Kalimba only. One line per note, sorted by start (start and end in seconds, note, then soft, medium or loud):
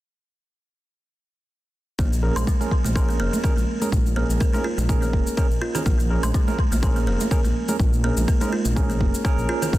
1.99 2.11 A#3 medium
2.36 2.47 F3 medium
2.47 2.59 G#3 medium
2.85 2.95 A#3 medium
2.96 3.03 F3 medium
3.09 3.18 A#3 medium
3.20 3.32 A#3 medium
3.44 3.51 A#4 medium
4.16 4.28 A#3 medium
4.40 4.48 A#4 medium
4.53 4.60 D#4 medium
4.64 4.72 F4 medium
5.02 5.13 A#3 medium
5.37 5.45 A#4 medium
5.61 5.69 F4 medium
5.75 5.81 A#4 medium
5.86 5.98 A#3 medium
6.23 6.34 F3 loud
6.34 6.46 G#3 medium
6.72 6.82 A#3 medium
6.83 6.90 F3 medium
6.96 7.06 A#3 medium
7.07 7.19 A#3 medium
7.31 7.38 A#4 medium
8.04 8.16 A#3 medium
8.28 8.35 A#4 medium
8.41 8.47 D#4 medium
8.52 8.60 F4 medium
8.90 9.00 A#3 medium
9.25 9.32 A#4 medium
9.49 9.56 F4 medium
9.62 9.68 A#4 medium
9.73 9.78 A#3 medium